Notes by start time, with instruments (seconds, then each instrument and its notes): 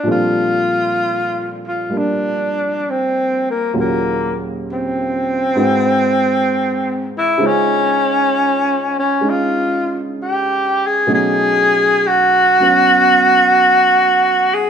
0.03 upright piano A#2 F3 G3 C4 A4
0.09 upright piano D4, tenor saxophone F4
1.67 tenor saxophone F4
1.90 upright piano G3 A#3 D4
1.98 tenor saxophone D4
2.90 tenor saxophone C4
3.50 tenor saxophone A#3
3.74 upright piano D#2 A#2 C#3 F#3 F4
3.80 tenor saxophone A#3
4.72 tenor saxophone C4
5.55 upright piano G#2 G#3 C4 E4 F#4 B4
7.18 tenor saxophone E4
7.38 upright piano C#3 G#3 D#4 C5
7.43 tenor saxophone C#4, upright piano F4
8.99 tenor saxophone C#4
9.21 upright piano G#3 C#4 D#4
9.30 tenor saxophone F4
10.22 tenor saxophone G4
10.87 tenor saxophone G#4
11.07 upright piano B2 F#3 A3 C#4 D#4
11.14 tenor saxophone G#4
12.07 tenor saxophone F#4
12.60 upright piano F#3 B3 C#4
14.54 tenor saxophone G#4